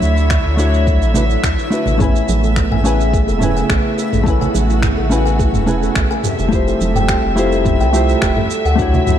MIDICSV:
0, 0, Header, 1, 7, 480
1, 0, Start_track
1, 0, Key_signature, 3, "major"
1, 0, Tempo, 566038
1, 1693, Time_signature, 4, 2, 24, 8
1, 7791, End_track
2, 0, Start_track
2, 0, Title_t, "Synth texture"
2, 0, Program_c, 0, 99
2, 0, Note_on_c, 0, 64, 87
2, 0, Note_on_c, 0, 76, 79
2, 7791, Note_off_c, 0, 64, 0
2, 7791, Note_off_c, 0, 76, 0
2, 7791, End_track
3, 0, Start_track
3, 0, Title_t, "Kalimba"
3, 0, Program_c, 1, 108
3, 1692, Note_on_c, 1, 68, 79
3, 1808, Note_off_c, 1, 68, 0
3, 1937, Note_on_c, 1, 68, 71
3, 2050, Note_off_c, 1, 68, 0
3, 2066, Note_on_c, 1, 69, 67
3, 2124, Note_off_c, 1, 69, 0
3, 2306, Note_on_c, 1, 80, 90
3, 2405, Note_off_c, 1, 80, 0
3, 2416, Note_on_c, 1, 68, 70
3, 2529, Note_off_c, 1, 68, 0
3, 2658, Note_on_c, 1, 68, 76
3, 2770, Note_off_c, 1, 68, 0
3, 2782, Note_on_c, 1, 69, 73
3, 2842, Note_off_c, 1, 69, 0
3, 3025, Note_on_c, 1, 80, 90
3, 3124, Note_off_c, 1, 80, 0
3, 3134, Note_on_c, 1, 68, 78
3, 3249, Note_off_c, 1, 68, 0
3, 3375, Note_on_c, 1, 68, 69
3, 3489, Note_off_c, 1, 68, 0
3, 3502, Note_on_c, 1, 69, 72
3, 3562, Note_off_c, 1, 69, 0
3, 3741, Note_on_c, 1, 80, 98
3, 3843, Note_off_c, 1, 80, 0
3, 3852, Note_on_c, 1, 68, 75
3, 3968, Note_off_c, 1, 68, 0
3, 4093, Note_on_c, 1, 68, 72
3, 4208, Note_off_c, 1, 68, 0
3, 4221, Note_on_c, 1, 69, 75
3, 4282, Note_off_c, 1, 69, 0
3, 4455, Note_on_c, 1, 80, 90
3, 4560, Note_off_c, 1, 80, 0
3, 4572, Note_on_c, 1, 68, 80
3, 4687, Note_off_c, 1, 68, 0
3, 4811, Note_on_c, 1, 68, 73
3, 4927, Note_off_c, 1, 68, 0
3, 4939, Note_on_c, 1, 69, 74
3, 5001, Note_off_c, 1, 69, 0
3, 5179, Note_on_c, 1, 80, 104
3, 5282, Note_off_c, 1, 80, 0
3, 5294, Note_on_c, 1, 67, 73
3, 5409, Note_off_c, 1, 67, 0
3, 5532, Note_on_c, 1, 67, 80
3, 5648, Note_off_c, 1, 67, 0
3, 5662, Note_on_c, 1, 69, 76
3, 5723, Note_off_c, 1, 69, 0
3, 5901, Note_on_c, 1, 79, 102
3, 6002, Note_off_c, 1, 79, 0
3, 6013, Note_on_c, 1, 67, 78
3, 6128, Note_off_c, 1, 67, 0
3, 6255, Note_on_c, 1, 67, 72
3, 6369, Note_off_c, 1, 67, 0
3, 6379, Note_on_c, 1, 69, 65
3, 6441, Note_off_c, 1, 69, 0
3, 6619, Note_on_c, 1, 79, 96
3, 6721, Note_off_c, 1, 79, 0
3, 6729, Note_on_c, 1, 67, 70
3, 6846, Note_off_c, 1, 67, 0
3, 6971, Note_on_c, 1, 67, 79
3, 7087, Note_off_c, 1, 67, 0
3, 7100, Note_on_c, 1, 69, 76
3, 7161, Note_off_c, 1, 69, 0
3, 7339, Note_on_c, 1, 78, 100
3, 7442, Note_off_c, 1, 78, 0
3, 7453, Note_on_c, 1, 66, 84
3, 7568, Note_off_c, 1, 66, 0
3, 7690, Note_on_c, 1, 66, 73
3, 7791, Note_off_c, 1, 66, 0
3, 7791, End_track
4, 0, Start_track
4, 0, Title_t, "Hollow-body jazz guitar"
4, 0, Program_c, 2, 26
4, 0, Note_on_c, 2, 57, 86
4, 0, Note_on_c, 2, 62, 78
4, 0, Note_on_c, 2, 64, 80
4, 0, Note_on_c, 2, 66, 80
4, 0, Note_on_c, 2, 73, 97
4, 452, Note_off_c, 2, 57, 0
4, 460, Note_off_c, 2, 62, 0
4, 467, Note_off_c, 2, 64, 0
4, 474, Note_off_c, 2, 66, 0
4, 481, Note_off_c, 2, 73, 0
4, 482, Note_on_c, 2, 57, 84
4, 492, Note_on_c, 2, 62, 82
4, 497, Note_on_c, 2, 64, 74
4, 504, Note_on_c, 2, 66, 76
4, 510, Note_on_c, 2, 73, 95
4, 941, Note_off_c, 2, 57, 0
4, 946, Note_off_c, 2, 62, 0
4, 948, Note_off_c, 2, 64, 0
4, 952, Note_off_c, 2, 66, 0
4, 955, Note_off_c, 2, 73, 0
4, 967, Note_on_c, 2, 57, 80
4, 971, Note_on_c, 2, 62, 69
4, 978, Note_on_c, 2, 64, 67
4, 985, Note_on_c, 2, 66, 73
4, 992, Note_on_c, 2, 71, 88
4, 1035, Note_off_c, 2, 57, 0
4, 1038, Note_off_c, 2, 62, 0
4, 1041, Note_off_c, 2, 64, 0
4, 1045, Note_off_c, 2, 66, 0
4, 1048, Note_off_c, 2, 71, 0
4, 1445, Note_on_c, 2, 57, 68
4, 1452, Note_on_c, 2, 62, 66
4, 1458, Note_on_c, 2, 64, 67
4, 1467, Note_on_c, 2, 66, 67
4, 1474, Note_on_c, 2, 71, 84
4, 1662, Note_off_c, 2, 57, 0
4, 1666, Note_off_c, 2, 62, 0
4, 1669, Note_off_c, 2, 64, 0
4, 1673, Note_off_c, 2, 66, 0
4, 1674, Note_on_c, 2, 57, 85
4, 1677, Note_off_c, 2, 71, 0
4, 1684, Note_on_c, 2, 61, 86
4, 1699, Note_on_c, 2, 64, 80
4, 1715, Note_on_c, 2, 80, 78
4, 1727, Note_on_c, 2, 71, 93
4, 2377, Note_off_c, 2, 57, 0
4, 2382, Note_off_c, 2, 61, 0
4, 2389, Note_off_c, 2, 64, 0
4, 2397, Note_off_c, 2, 80, 0
4, 2403, Note_off_c, 2, 71, 0
4, 2407, Note_on_c, 2, 57, 89
4, 2414, Note_on_c, 2, 61, 79
4, 2420, Note_on_c, 2, 64, 78
4, 2426, Note_on_c, 2, 80, 80
4, 2435, Note_on_c, 2, 71, 95
4, 2860, Note_off_c, 2, 57, 0
4, 2867, Note_off_c, 2, 61, 0
4, 2870, Note_off_c, 2, 64, 0
4, 2870, Note_on_c, 2, 57, 78
4, 2873, Note_off_c, 2, 80, 0
4, 2877, Note_off_c, 2, 71, 0
4, 2885, Note_on_c, 2, 61, 74
4, 2897, Note_on_c, 2, 64, 73
4, 2911, Note_on_c, 2, 80, 70
4, 2924, Note_on_c, 2, 71, 86
4, 3575, Note_off_c, 2, 57, 0
4, 3583, Note_off_c, 2, 61, 0
4, 3588, Note_off_c, 2, 64, 0
4, 3592, Note_on_c, 2, 57, 88
4, 3596, Note_off_c, 2, 80, 0
4, 3602, Note_off_c, 2, 71, 0
4, 3605, Note_on_c, 2, 61, 79
4, 3618, Note_on_c, 2, 64, 79
4, 3631, Note_on_c, 2, 80, 83
4, 3646, Note_on_c, 2, 71, 94
4, 4296, Note_off_c, 2, 57, 0
4, 4303, Note_off_c, 2, 61, 0
4, 4309, Note_off_c, 2, 64, 0
4, 4316, Note_off_c, 2, 80, 0
4, 4320, Note_on_c, 2, 57, 88
4, 4323, Note_off_c, 2, 71, 0
4, 4325, Note_on_c, 2, 61, 81
4, 4335, Note_on_c, 2, 64, 81
4, 4342, Note_on_c, 2, 80, 79
4, 4348, Note_on_c, 2, 71, 99
4, 4780, Note_off_c, 2, 57, 0
4, 4783, Note_off_c, 2, 61, 0
4, 4788, Note_off_c, 2, 64, 0
4, 4791, Note_off_c, 2, 80, 0
4, 4794, Note_off_c, 2, 71, 0
4, 4799, Note_on_c, 2, 57, 74
4, 4803, Note_on_c, 2, 61, 71
4, 4813, Note_on_c, 2, 64, 70
4, 4819, Note_on_c, 2, 80, 73
4, 4827, Note_on_c, 2, 71, 86
4, 5273, Note_off_c, 2, 57, 0
4, 5275, Note_off_c, 2, 61, 0
4, 5280, Note_off_c, 2, 64, 0
4, 5283, Note_off_c, 2, 80, 0
4, 5287, Note_off_c, 2, 71, 0
4, 5500, Note_on_c, 2, 57, 91
4, 5515, Note_on_c, 2, 64, 81
4, 5526, Note_on_c, 2, 65, 81
4, 5541, Note_on_c, 2, 67, 83
4, 5555, Note_on_c, 2, 72, 103
4, 6210, Note_off_c, 2, 57, 0
4, 6218, Note_off_c, 2, 64, 0
4, 6223, Note_off_c, 2, 65, 0
4, 6230, Note_off_c, 2, 67, 0
4, 6238, Note_off_c, 2, 72, 0
4, 6239, Note_on_c, 2, 57, 87
4, 6246, Note_on_c, 2, 64, 84
4, 6254, Note_on_c, 2, 65, 84
4, 6261, Note_on_c, 2, 67, 79
4, 6267, Note_on_c, 2, 72, 100
4, 6699, Note_off_c, 2, 57, 0
4, 6703, Note_off_c, 2, 64, 0
4, 6707, Note_off_c, 2, 65, 0
4, 6710, Note_off_c, 2, 67, 0
4, 6713, Note_off_c, 2, 72, 0
4, 6722, Note_on_c, 2, 57, 80
4, 6727, Note_on_c, 2, 64, 73
4, 6735, Note_on_c, 2, 65, 78
4, 6742, Note_on_c, 2, 67, 75
4, 6751, Note_on_c, 2, 72, 82
4, 7195, Note_off_c, 2, 57, 0
4, 7197, Note_off_c, 2, 64, 0
4, 7201, Note_off_c, 2, 65, 0
4, 7204, Note_off_c, 2, 67, 0
4, 7209, Note_off_c, 2, 72, 0
4, 7425, Note_on_c, 2, 57, 93
4, 7439, Note_on_c, 2, 62, 87
4, 7452, Note_on_c, 2, 64, 79
4, 7466, Note_on_c, 2, 66, 81
4, 7481, Note_on_c, 2, 73, 98
4, 7791, Note_off_c, 2, 57, 0
4, 7791, Note_off_c, 2, 62, 0
4, 7791, Note_off_c, 2, 64, 0
4, 7791, Note_off_c, 2, 66, 0
4, 7791, Note_off_c, 2, 73, 0
4, 7791, End_track
5, 0, Start_track
5, 0, Title_t, "String section"
5, 0, Program_c, 3, 48
5, 0, Note_on_c, 3, 50, 70
5, 0, Note_on_c, 3, 54, 66
5, 0, Note_on_c, 3, 57, 65
5, 0, Note_on_c, 3, 73, 65
5, 0, Note_on_c, 3, 76, 82
5, 1671, Note_off_c, 3, 50, 0
5, 1671, Note_off_c, 3, 73, 0
5, 1672, Note_off_c, 3, 54, 0
5, 1693, Note_on_c, 3, 59, 67
5, 1696, Note_on_c, 3, 49, 70
5, 3580, Note_off_c, 3, 76, 0
5, 3615, Note_on_c, 3, 66, 80
5, 5260, Note_off_c, 3, 59, 0
5, 5261, Note_off_c, 3, 49, 0
5, 5261, Note_off_c, 3, 57, 0
5, 5278, Note_off_c, 3, 66, 0
5, 5294, Note_on_c, 3, 53, 67
5, 5295, Note_on_c, 3, 55, 66
5, 5296, Note_on_c, 3, 76, 84
5, 5297, Note_on_c, 3, 48, 77
5, 5297, Note_on_c, 3, 57, 74
5, 7195, Note_off_c, 3, 53, 0
5, 7195, Note_off_c, 3, 55, 0
5, 7196, Note_off_c, 3, 48, 0
5, 7207, Note_on_c, 3, 50, 76
5, 7209, Note_on_c, 3, 54, 69
5, 7791, Note_off_c, 3, 50, 0
5, 7791, Note_off_c, 3, 54, 0
5, 7791, Note_off_c, 3, 57, 0
5, 7791, Note_off_c, 3, 76, 0
5, 7791, End_track
6, 0, Start_track
6, 0, Title_t, "Sub bass"
6, 0, Program_c, 4, 38
6, 19, Note_on_c, 4, 38, 90
6, 321, Note_off_c, 4, 38, 0
6, 385, Note_on_c, 4, 38, 83
6, 864, Note_on_c, 4, 33, 97
6, 877, Note_off_c, 4, 38, 0
6, 1160, Note_off_c, 4, 33, 0
6, 1218, Note_on_c, 4, 38, 80
6, 1304, Note_off_c, 4, 38, 0
6, 1582, Note_on_c, 4, 33, 81
6, 1879, Note_off_c, 4, 33, 0
6, 1937, Note_on_c, 4, 33, 99
6, 2240, Note_off_c, 4, 33, 0
6, 2303, Note_on_c, 4, 33, 84
6, 2780, Note_on_c, 4, 28, 88
6, 2793, Note_off_c, 4, 33, 0
6, 3078, Note_off_c, 4, 28, 0
6, 3136, Note_on_c, 4, 33, 82
6, 3223, Note_off_c, 4, 33, 0
6, 3505, Note_on_c, 4, 33, 77
6, 3800, Note_off_c, 4, 33, 0
6, 3854, Note_on_c, 4, 33, 102
6, 4159, Note_off_c, 4, 33, 0
6, 4220, Note_on_c, 4, 33, 87
6, 4696, Note_on_c, 4, 28, 92
6, 4709, Note_off_c, 4, 33, 0
6, 4996, Note_off_c, 4, 28, 0
6, 5053, Note_on_c, 4, 33, 75
6, 5142, Note_off_c, 4, 33, 0
6, 5418, Note_on_c, 4, 29, 81
6, 5717, Note_off_c, 4, 29, 0
6, 5770, Note_on_c, 4, 29, 101
6, 6077, Note_off_c, 4, 29, 0
6, 6134, Note_on_c, 4, 29, 81
6, 6612, Note_on_c, 4, 36, 92
6, 6624, Note_off_c, 4, 29, 0
6, 6914, Note_off_c, 4, 36, 0
6, 6973, Note_on_c, 4, 29, 79
6, 7062, Note_off_c, 4, 29, 0
6, 7335, Note_on_c, 4, 38, 91
6, 7635, Note_off_c, 4, 38, 0
6, 7693, Note_on_c, 4, 38, 92
6, 7791, Note_off_c, 4, 38, 0
6, 7791, End_track
7, 0, Start_track
7, 0, Title_t, "Drums"
7, 2, Note_on_c, 9, 63, 90
7, 19, Note_on_c, 9, 82, 69
7, 87, Note_off_c, 9, 63, 0
7, 104, Note_off_c, 9, 82, 0
7, 146, Note_on_c, 9, 82, 34
7, 231, Note_off_c, 9, 82, 0
7, 255, Note_on_c, 9, 26, 90
7, 259, Note_on_c, 9, 36, 93
7, 260, Note_on_c, 9, 82, 41
7, 340, Note_off_c, 9, 26, 0
7, 344, Note_off_c, 9, 36, 0
7, 345, Note_off_c, 9, 82, 0
7, 498, Note_on_c, 9, 82, 73
7, 583, Note_off_c, 9, 82, 0
7, 628, Note_on_c, 9, 82, 31
7, 713, Note_off_c, 9, 82, 0
7, 739, Note_on_c, 9, 36, 96
7, 740, Note_on_c, 9, 82, 39
7, 824, Note_off_c, 9, 36, 0
7, 824, Note_off_c, 9, 82, 0
7, 867, Note_on_c, 9, 82, 29
7, 952, Note_off_c, 9, 82, 0
7, 974, Note_on_c, 9, 64, 89
7, 979, Note_on_c, 9, 82, 81
7, 1058, Note_off_c, 9, 64, 0
7, 1063, Note_off_c, 9, 82, 0
7, 1106, Note_on_c, 9, 82, 31
7, 1191, Note_off_c, 9, 82, 0
7, 1217, Note_on_c, 9, 26, 95
7, 1218, Note_on_c, 9, 36, 94
7, 1222, Note_on_c, 9, 82, 43
7, 1302, Note_off_c, 9, 26, 0
7, 1303, Note_off_c, 9, 36, 0
7, 1307, Note_off_c, 9, 82, 0
7, 1347, Note_on_c, 9, 82, 31
7, 1432, Note_off_c, 9, 82, 0
7, 1459, Note_on_c, 9, 82, 76
7, 1544, Note_off_c, 9, 82, 0
7, 1575, Note_on_c, 9, 64, 72
7, 1587, Note_on_c, 9, 82, 34
7, 1660, Note_off_c, 9, 64, 0
7, 1672, Note_off_c, 9, 82, 0
7, 1693, Note_on_c, 9, 45, 72
7, 1698, Note_on_c, 9, 36, 97
7, 1699, Note_on_c, 9, 82, 44
7, 1778, Note_off_c, 9, 45, 0
7, 1783, Note_off_c, 9, 36, 0
7, 1784, Note_off_c, 9, 82, 0
7, 1828, Note_on_c, 9, 82, 31
7, 1913, Note_off_c, 9, 82, 0
7, 1938, Note_on_c, 9, 82, 72
7, 1941, Note_on_c, 9, 63, 90
7, 2023, Note_off_c, 9, 82, 0
7, 2026, Note_off_c, 9, 63, 0
7, 2065, Note_on_c, 9, 82, 33
7, 2150, Note_off_c, 9, 82, 0
7, 2173, Note_on_c, 9, 26, 84
7, 2178, Note_on_c, 9, 36, 95
7, 2179, Note_on_c, 9, 82, 37
7, 2258, Note_off_c, 9, 26, 0
7, 2263, Note_off_c, 9, 36, 0
7, 2263, Note_off_c, 9, 82, 0
7, 2302, Note_on_c, 9, 45, 69
7, 2387, Note_off_c, 9, 45, 0
7, 2418, Note_on_c, 9, 82, 71
7, 2503, Note_off_c, 9, 82, 0
7, 2548, Note_on_c, 9, 82, 30
7, 2633, Note_off_c, 9, 82, 0
7, 2658, Note_on_c, 9, 36, 97
7, 2661, Note_on_c, 9, 82, 40
7, 2743, Note_off_c, 9, 36, 0
7, 2745, Note_off_c, 9, 82, 0
7, 2786, Note_on_c, 9, 82, 30
7, 2871, Note_off_c, 9, 82, 0
7, 2893, Note_on_c, 9, 63, 60
7, 2894, Note_on_c, 9, 45, 71
7, 2900, Note_on_c, 9, 82, 74
7, 2977, Note_off_c, 9, 63, 0
7, 2979, Note_off_c, 9, 45, 0
7, 2984, Note_off_c, 9, 82, 0
7, 3027, Note_on_c, 9, 82, 31
7, 3112, Note_off_c, 9, 82, 0
7, 3134, Note_on_c, 9, 26, 86
7, 3137, Note_on_c, 9, 36, 101
7, 3140, Note_on_c, 9, 82, 41
7, 3219, Note_off_c, 9, 26, 0
7, 3222, Note_off_c, 9, 36, 0
7, 3224, Note_off_c, 9, 82, 0
7, 3379, Note_on_c, 9, 82, 73
7, 3463, Note_off_c, 9, 82, 0
7, 3501, Note_on_c, 9, 45, 74
7, 3507, Note_on_c, 9, 82, 33
7, 3586, Note_off_c, 9, 45, 0
7, 3591, Note_off_c, 9, 82, 0
7, 3615, Note_on_c, 9, 36, 100
7, 3621, Note_on_c, 9, 82, 42
7, 3700, Note_off_c, 9, 36, 0
7, 3706, Note_off_c, 9, 82, 0
7, 3745, Note_on_c, 9, 64, 83
7, 3746, Note_on_c, 9, 82, 27
7, 3829, Note_off_c, 9, 64, 0
7, 3831, Note_off_c, 9, 82, 0
7, 3853, Note_on_c, 9, 63, 83
7, 3859, Note_on_c, 9, 82, 70
7, 3938, Note_off_c, 9, 63, 0
7, 3944, Note_off_c, 9, 82, 0
7, 3985, Note_on_c, 9, 82, 33
7, 4070, Note_off_c, 9, 82, 0
7, 4092, Note_on_c, 9, 26, 86
7, 4092, Note_on_c, 9, 45, 67
7, 4096, Note_on_c, 9, 36, 91
7, 4097, Note_on_c, 9, 82, 41
7, 4176, Note_off_c, 9, 26, 0
7, 4176, Note_off_c, 9, 45, 0
7, 4180, Note_off_c, 9, 36, 0
7, 4182, Note_off_c, 9, 82, 0
7, 4336, Note_on_c, 9, 82, 68
7, 4421, Note_off_c, 9, 82, 0
7, 4464, Note_on_c, 9, 82, 28
7, 4549, Note_off_c, 9, 82, 0
7, 4575, Note_on_c, 9, 36, 93
7, 4578, Note_on_c, 9, 82, 39
7, 4660, Note_off_c, 9, 36, 0
7, 4662, Note_off_c, 9, 82, 0
7, 4696, Note_on_c, 9, 45, 74
7, 4701, Note_on_c, 9, 82, 28
7, 4781, Note_off_c, 9, 45, 0
7, 4786, Note_off_c, 9, 82, 0
7, 4808, Note_on_c, 9, 64, 90
7, 4815, Note_on_c, 9, 82, 74
7, 4893, Note_off_c, 9, 64, 0
7, 4899, Note_off_c, 9, 82, 0
7, 4943, Note_on_c, 9, 82, 30
7, 5027, Note_off_c, 9, 82, 0
7, 5050, Note_on_c, 9, 26, 87
7, 5054, Note_on_c, 9, 36, 89
7, 5055, Note_on_c, 9, 82, 39
7, 5134, Note_off_c, 9, 26, 0
7, 5139, Note_off_c, 9, 36, 0
7, 5140, Note_off_c, 9, 82, 0
7, 5183, Note_on_c, 9, 82, 29
7, 5267, Note_off_c, 9, 82, 0
7, 5288, Note_on_c, 9, 45, 71
7, 5293, Note_on_c, 9, 82, 69
7, 5373, Note_off_c, 9, 45, 0
7, 5378, Note_off_c, 9, 82, 0
7, 5416, Note_on_c, 9, 64, 72
7, 5419, Note_on_c, 9, 82, 32
7, 5501, Note_off_c, 9, 64, 0
7, 5504, Note_off_c, 9, 82, 0
7, 5532, Note_on_c, 9, 82, 40
7, 5534, Note_on_c, 9, 36, 95
7, 5617, Note_off_c, 9, 82, 0
7, 5619, Note_off_c, 9, 36, 0
7, 5663, Note_on_c, 9, 82, 28
7, 5748, Note_off_c, 9, 82, 0
7, 5774, Note_on_c, 9, 82, 67
7, 5776, Note_on_c, 9, 63, 81
7, 5859, Note_off_c, 9, 82, 0
7, 5861, Note_off_c, 9, 63, 0
7, 5897, Note_on_c, 9, 45, 78
7, 5902, Note_on_c, 9, 82, 32
7, 5982, Note_off_c, 9, 45, 0
7, 5987, Note_off_c, 9, 82, 0
7, 6008, Note_on_c, 9, 26, 91
7, 6013, Note_on_c, 9, 82, 37
7, 6014, Note_on_c, 9, 36, 88
7, 6093, Note_off_c, 9, 26, 0
7, 6098, Note_off_c, 9, 36, 0
7, 6098, Note_off_c, 9, 82, 0
7, 6252, Note_on_c, 9, 82, 70
7, 6337, Note_off_c, 9, 82, 0
7, 6379, Note_on_c, 9, 82, 30
7, 6464, Note_off_c, 9, 82, 0
7, 6487, Note_on_c, 9, 45, 71
7, 6492, Note_on_c, 9, 82, 39
7, 6493, Note_on_c, 9, 36, 94
7, 6572, Note_off_c, 9, 45, 0
7, 6577, Note_off_c, 9, 82, 0
7, 6578, Note_off_c, 9, 36, 0
7, 6619, Note_on_c, 9, 82, 27
7, 6704, Note_off_c, 9, 82, 0
7, 6734, Note_on_c, 9, 82, 74
7, 6739, Note_on_c, 9, 63, 56
7, 6819, Note_off_c, 9, 82, 0
7, 6824, Note_off_c, 9, 63, 0
7, 6862, Note_on_c, 9, 82, 31
7, 6946, Note_off_c, 9, 82, 0
7, 6968, Note_on_c, 9, 26, 89
7, 6973, Note_on_c, 9, 36, 97
7, 6974, Note_on_c, 9, 82, 40
7, 7053, Note_off_c, 9, 26, 0
7, 7058, Note_off_c, 9, 36, 0
7, 7058, Note_off_c, 9, 82, 0
7, 7095, Note_on_c, 9, 45, 75
7, 7180, Note_off_c, 9, 45, 0
7, 7213, Note_on_c, 9, 82, 68
7, 7298, Note_off_c, 9, 82, 0
7, 7339, Note_on_c, 9, 82, 30
7, 7424, Note_off_c, 9, 82, 0
7, 7452, Note_on_c, 9, 82, 41
7, 7454, Note_on_c, 9, 36, 93
7, 7537, Note_off_c, 9, 82, 0
7, 7538, Note_off_c, 9, 36, 0
7, 7580, Note_on_c, 9, 82, 27
7, 7582, Note_on_c, 9, 64, 95
7, 7665, Note_off_c, 9, 82, 0
7, 7667, Note_off_c, 9, 64, 0
7, 7688, Note_on_c, 9, 45, 73
7, 7694, Note_on_c, 9, 63, 78
7, 7694, Note_on_c, 9, 82, 71
7, 7773, Note_off_c, 9, 45, 0
7, 7778, Note_off_c, 9, 82, 0
7, 7779, Note_off_c, 9, 63, 0
7, 7791, End_track
0, 0, End_of_file